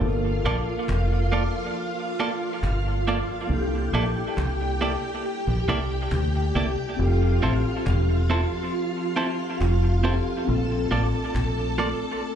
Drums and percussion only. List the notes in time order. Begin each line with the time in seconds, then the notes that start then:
0.01 cajon slap
0.44 cajon slap
0.67 cajon slap
0.88 cajon bass, cajon slap
1.32 cajon slap
1.54 cajon slap
1.75 cajon slap
2.20 cajon slap
2.41 cajon slap
2.63 cajon bass, cajon slap
3.07 cajon slap
3.29 cajon slap
3.50 cajon slap
3.93 cajon slap
4.37 cajon bass, cajon slap
4.81 cajon slap
5.03 cajon slap
5.24 cajon slap
5.68 cajon slap
6.11 cajon bass, cajon slap
6.55 cajon slap
6.98 cajon slap
7.42 cajon slap
7.86 cajon bass, cajon slap
8.30 cajon slap
8.52 cajon slap
8.73 cajon slap
9.17 cajon slap
9.40 cajon slap
9.61 cajon bass, cajon slap
10.05 cajon slap
10.27 cajon slap
10.48 cajon slap
10.91 cajon slap
11.35 cajon bass, cajon slap
11.80 cajon slap
12.00 cajon slap
12.21 cajon slap